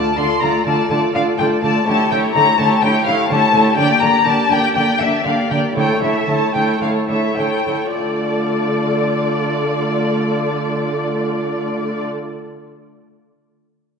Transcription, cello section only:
0.17 D3
0.42 D3
0.66 D3
0.90 D3
1.15 D3
1.39 D3
1.63 D3
1.87 D3
2.11 D3
2.35 D3
2.59 D3
2.83 D3
3.07 D3
3.30 D3
3.54 D3
3.78 D3
4.02 D3
4.26 D3
4.51 D3
4.75 D3
5.01 D3
5.25 D3
5.50 D3
5.76 D3
6.02 D3
6.28 D3
6.55 D3
6.82 D3
7.09 D3
7.38 D3
7.67 D3
7.96 D3

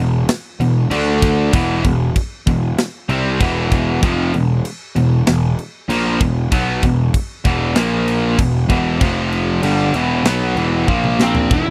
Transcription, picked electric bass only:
Already playing: E1
0.60 E1
0.90 D2
1.53 E1
1.85 E1
2.47 E1
3.09 C2
3.41 E1
4.03 F1
4.34 E1
4.96 E1
5.27 E1
5.89 A#1
6.21 E1
6.52 B1
6.83 E1
7.45 E1
7.77 A#1
8.39 E1
8.70 E1
9.01 F1
9.63 G1
9.94 E1
10.24 B1
10.56 E1
10.88 A#1
11.51 E1
11.66 E1

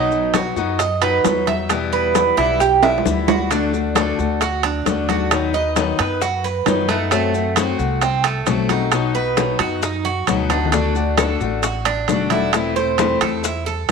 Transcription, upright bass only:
Already playing: B1
0.56 F#2
1.24 E2
2.37 B1
3.05 D2
4.19 D2
4.86 D#2
5.99 F#2
6.66 F#2
7.79 C2
8.47 B1
9.59 F#2
10.27 D2
11.40 A1
12.08 E1
13.21 E2

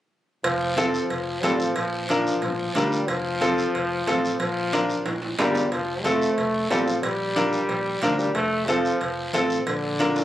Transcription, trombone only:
0.44 F3
0.77 F3
1.43 G3
1.60 F3
1.77 F3
2.09 F3
2.76 G3
3.09 F3
4.40 F3
5.39 G3
5.72 F3
6.04 A3
6.70 G3
6.86 F3
7.02 G3
8.02 F3
8.19 G3
8.35 A3
8.66 F3
9.67 D3

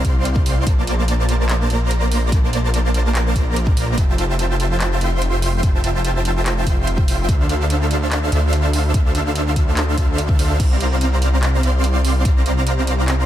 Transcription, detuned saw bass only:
0.05 C2
0.67 A#1
1.70 A#1
2.32 A#1
3.36 A#1
3.98 F1
5.01 F1
5.63 F1
6.67 F1
7.29 D2
8.32 D2
8.94 D2
9.98 D2
10.39 D2
10.60 C2
11.63 C2
12.25 C2

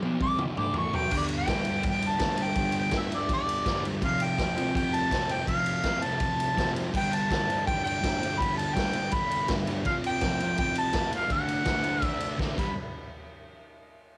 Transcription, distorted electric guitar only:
0.03 B2 F#3 B3
0.20 C3 G3 C4
0.39 F2 C3 F3
0.56 D3 A3 D4
0.75 A2 E3 A3
0.93 B2 F#3 B3
1.10 G2 D3 G3
1.47 G2 D3 G3
1.66 D3 G3
2.18 G2 D3
2.23 G3
2.37 D3 G3
2.56 G2 D3 G3
2.92 G2 D3 G3
3.12 D3 G3
3.67 G2 D3 G3
3.86 D3 G3
4.03 F2 C3 F3
4.38 F2 C3 F3
4.57 C3 F3
5.11 F2 C3 F3
5.28 C3 F3
5.46 F2 C3 F3
5.85 F2 C3 F3
6.03 C3 F3
6.56 F2 C3 F3
6.75 C3 F3
6.91 G2 D3 G3
7.31 G2 D3 G3
7.48 D3 G3
8.02 G2 D3 G3
8.21 D3 G3
8.40 G2 D3 G3
8.75 G2 D3
8.80 G3
8.94 D3 G3
9.49 G2 D3 G3
9.68 D3 G3
9.86 F2 C3 F3
10.22 F2 C3 F3
10.40 C3 F3
10.93 F2 C3 F3
11.12 C3 F3
11.28 D3 A3 D4
11.65 D3 A3 D4
11.83 A3 D4
12.38 D3 A3 D4
12.56 G2 D3 G3

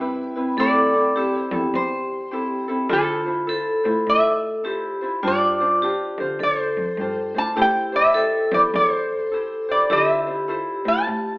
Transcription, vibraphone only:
Already playing: E4
0.58 A4
1.16 G4
2.90 F4
3.49 A4
4.65 G4
5.23 F4
5.82 G4
6.40 A4
7.57 G4
8.14 A4
9.90 G4

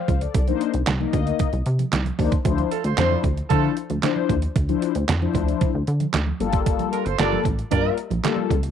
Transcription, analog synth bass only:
0.08 C#2
0.35 C2
0.74 C2
0.88 C2
1.13 D2
1.53 C2
1.66 C3
1.93 C2
2.19 D#2
2.45 D2
2.84 D2
2.98 F2
3.24 D2
3.51 D3
3.90 D2
4.29 D#2
4.56 D2
4.95 D2
5.09 F2
5.35 D2
5.75 D2
5.88 D3
6.14 D2
6.40 G1
7.06 G1
7.19 G1
7.45 A1
7.72 G2
8.11 A#1
8.50 C#2

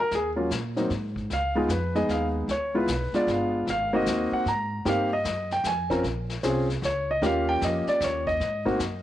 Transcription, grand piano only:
0.00 A#4
0.15 G#4
0.36 F#3 A#3 C#4 F4
0.76 F#3 A#3 C4 D#4
1.33 F5
1.55 G#3 B3 D#4 F4 G#4
1.71 B4
1.95 G#3 B3 D#4 G#4 D#5
2.11 F5
2.51 C#5
2.75 G#3 B3 E4 F4 B4
3.14 G#3 B3 D4 F4 D5
3.31 F5
3.70 F5
3.93 A#3 C4 D#4 F#4 D#5
4.33 F#5
4.48 A#5
4.85 A#3 C4 D#4 G4
4.89 F5
5.13 D#5
5.52 G5
5.67 G#5
5.90 C4 C#4 F4 A#4
6.43 C4 C#4 F4 G#4
6.85 C#5
7.11 D#5
7.22 A#3 C#4 F4 G4 F5
7.49 G5
7.64 D#5
7.89 D5
8.04 C#5
8.27 D#5
8.65 A#3 C4 D#4 F#4

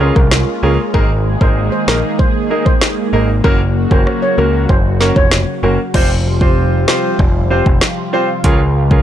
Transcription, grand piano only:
0.00 C#4 F4 G#4 A#4
0.63 C#4 F4 G#4 A#4
0.94 A#3 D#4 G#4 A#4
1.41 A#3 D#4 G#4 A#4
1.88 A#3 D#4 G#4 A#4
2.50 A#3 D#4 G#4 A#4
3.13 A#3 D#4 G#4 A#4
3.44 A#3 C#4 F#4 A#4
3.91 A#3 C#4 F#4 A#4
4.38 A#3 C#4 F#4 A#4
5.00 A#3 C#4 F#4 A#4
5.63 A#3 C#4 F#4 A#4
5.94 C4 F4 G4 C5
6.41 C4 F4 G4 C5
6.88 C4 F4 G4 C5
7.50 C4 F4 G4 C5
8.13 C4 F4 G4 C5
8.44 C#4 F4 G#4 A#4
8.91 C#4 F4 G#4 A#4

